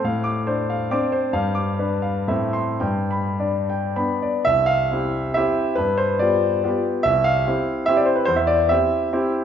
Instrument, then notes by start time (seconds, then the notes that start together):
grand piano
0.04 A2 F5
0.24 D6
0.47 D4 C5
0.70 F5
0.91 C4 D4 D6
1.12 C5
1.33 G2 F5
1.55 D6
1.79 D4 B4
2.02 F5
2.28 A2 A3 C4 E5
2.53 C6
2.80 G2 G5
3.11 B5
3.40 D4 D5
3.70 G5
3.96 B3 D4 B5
4.22 D5
4.45 C2 E5
4.66 F5
4.92 C4 E4 G4
5.34 C4 E4 G4 E5
5.75 G2 B4
5.97 C5
6.19 B3 F4 G4 D5
6.64 B3 F4 G4
7.03 C2 E5
7.24 F5
7.47 C4 E4 G4
7.86 C4 E4 G4 E5
7.97 D5
8.06 C5
8.16 B4
8.25 E2 C5
8.36 E5
8.47 D5
8.69 C4 E4 G4 E5
9.13 C4 E4 G4